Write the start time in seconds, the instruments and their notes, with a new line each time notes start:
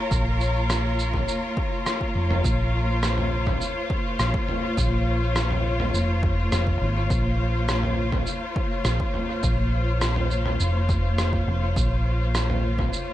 Already playing: string section A#3 F4 A#4 C#5
0.11 fingered electric bass A#1, kick, cabasa
0.41 cabasa
0.70 cross-stick, cabasa
0.99 cabasa
1.14 kick, mid tom
1.28 cabasa
1.57 kick
1.86 cross-stick, cabasa
2.01 kick
2.15 fingered electric bass F1
2.31 mid tom
2.44 fingered electric bass A#1, kick, cabasa
2.87 string section C5
3.03 cross-stick, cabasa
3.18 mid tom
3.47 kick, mid tom
3.61 cabasa
3.90 kick
4.19 fingered electric bass A#1, cross-stick, cabasa
4.34 kick
4.48 mid tom
4.77 fingered electric bass A#1, kick, cabasa
5.36 cross-stick, cabasa
5.51 mid tom
5.80 mid tom
5.94 fingered electric bass F1, cabasa
6.23 kick
6.52 fingered electric bass F1, cross-stick, cabasa
6.67 kick
6.81 fingered electric bass G#1
7.10 fingered electric bass A#1, kick, cabasa
7.69 cross-stick, cabasa
7.83 mid tom
8.12 kick, mid tom
8.27 cabasa
8.56 kick
8.85 fingered electric bass A#1, cross-stick, cabasa
9.00 kick
9.14 mid tom
9.43 fingered electric bass A#1, kick, cabasa
10.01 cross-stick, cabasa
10.16 mid tom
10.31 cabasa
10.46 mid tom
10.60 fingered electric bass F1, cabasa
10.89 kick, cabasa
11.18 cross-stick, cabasa
11.33 kick
11.48 fingered electric bass F1
11.76 fingered electric bass A#1, kick, cabasa
12.35 cross-stick, cabasa
12.50 mid tom
12.79 kick, mid tom
12.93 cabasa